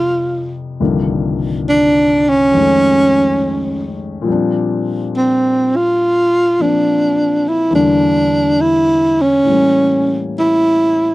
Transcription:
Already playing: F2 C3 F3 G3 C4 D4 F4 G4 A4
0.80 C2 G2 D3 D#3 F3 A#3
1.69 D4
2.29 C#4
2.52 F2 D#3 G#3
2.56 A3 C#4
4.22 A#2 F3
4.26 G3 C4
4.32 D4
5.17 C4
5.76 F4
6.59 F3 A#3 C4 D4
7.48 E4
7.71 E2 E3 G3 A#3
7.75 D3 D4
8.61 E4
9.22 C#4
9.43 A2 E3
9.50 G3 A#3
9.55 C#4
10.39 E4

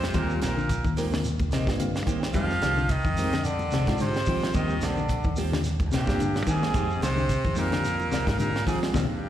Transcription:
Already playing: F2 C3 C5
0.02 snare, high conga, shekere
0.13 D#2 A#2 D#3 G3 A#3 C4 F4 G4 A#4, kick, closed hi-hat, low conga, shekere
0.30 high conga, shekere
0.42 A#1 A#2 D#3 A#3 C4 G4 A#4, snare, closed hi-hat, high conga, low conga, shekere
0.57 D3, shekere
0.69 kick, closed hi-hat, shekere
0.84 D#2 D#3, kick, shekere
0.97 D#3 A#3 C4 F4 G4 A#4, snare, open hi-hat, high conga, shekere
1.12 D3, snare, shekere
1.25 closed hi-hat, shekere
1.40 kick, high conga, shekere
1.52 A#1 C3 D#3 A#3 C4 G4 D#5, snare, closed hi-hat, shekere
1.67 G2 A#3 C4 F4 G4, kick, snare, shekere
1.79 D3 F5, closed hi-hat, high conga, shekere
1.95 snare, shekere
2.06 D#3 A#3 C4 G4 G5, kick, closed hi-hat, high conga, shekere
2.21 C4 G4, muted clean electric guitar stroke, snare, high conga, shekere
2.33 F2 D#3 F3 G3 G#3 C4 D#4 G4 F5, kick, closed hi-hat, low conga, shekere
2.50 snare, high conga, shekere
2.62 C2 D#3 G#3 C4 G4, snare, closed hi-hat, high conga, low conga, shekere
2.77 D3, shekere
2.89 D#3 D#5, kick, closed hi-hat, shekere
3.05 F2 D#3, kick, shekere
3.17 G#3 C4 D#4 G4 A#4, open hi-hat, high conga, shekere
3.33 D3, snare, closed hi-hat, shekere
3.44 D3 D5, closed hi-hat, shekere
3.59 high conga, shekere
3.71 C2 C3 D#3 G#3 C4 G4, snare, closed hi-hat, shekere
3.86 G#2 G#3 C4 D#4 F4 G4, kick, snare, closed hi-hat, shekere
3.98 C3 D3 C5, snare, closed hi-hat, high conga, shekere
4.13 snare, shekere
4.26 D#3 F3 G#3 C4 G4, kick, open hi-hat, high conga, shekere
4.40 C4 G4, snare, high conga, shekere
4.44 G#3
4.54 D#2 D#3 G3 A#3 C4 F4 G4 D#5, kick, closed hi-hat, low conga, shekere
4.69 high conga, shekere
4.81 A#1 D3 D#3 A#3 C4 G4 D5, snare, closed hi-hat, high conga, low conga, shekere
4.96 D3, shekere
5.09 kick, closed hi-hat, shekere
5.23 D#2 D#3, kick, shekere
5.36 D#3 A#3 C4 F4 G4, open hi-hat, high conga, shekere
5.52 D3, snare, low conga, shekere
5.64 snare, closed hi-hat, shekere
5.80 kick, high conga, shekere
5.92 A#1 C3 D#3 A#3 C4 G4, snare, closed hi-hat, shekere
5.97 G2
6.07 G2 A#3 C4 F4 G4, kick, snare, shekere
6.20 D3, closed hi-hat, high conga, shekere
6.35 snare, shekere
6.46 G#2 D#3 A#3 C4 G4 G#4, kick, closed hi-hat, shekere
6.62 A#3 C4 G4, snare, high conga, shekere
6.74 F2 D#3 G#3 C4 D#4 G4, muted clean electric guitar stroke, kick, closed hi-hat, low conga, shekere
6.90 shekere
7.01 C2 C3 D#3 G#3 C4 G4 C5, snare, closed hi-hat, high conga, low conga, shekere
7.17 D3, shekere
7.29 kick, closed hi-hat, shekere
7.44 F2 D#3, kick, shekere
7.55 A#2 D#3 G#3 C4 D#4 G4 A#4, open hi-hat, high conga, shekere
7.72 D3, snare, closed hi-hat, shekere
7.84 snare, closed hi-hat, shekere
8.00 high conga, shekere
8.11 C2 C3 D#3 G#3 C4 G4, snare, closed hi-hat, shekere
8.27 G#2 G#3 C4 D#4 G4, kick, snare, closed hi-hat, shekere
8.39 A#2 D3 A#4, closed hi-hat, high conga, shekere
8.55 snare, shekere
8.66 G#2 D#3 F3 G#3 C4 G4 G#4, kick, snare, open hi-hat, high conga, shekere
8.81 G#3 C4 G4, snare, high conga, shekere
8.94 D#2 G2 A#2 C3 D#3 A#3 C4 D#4 G4, kick, snare, low conga, shekere

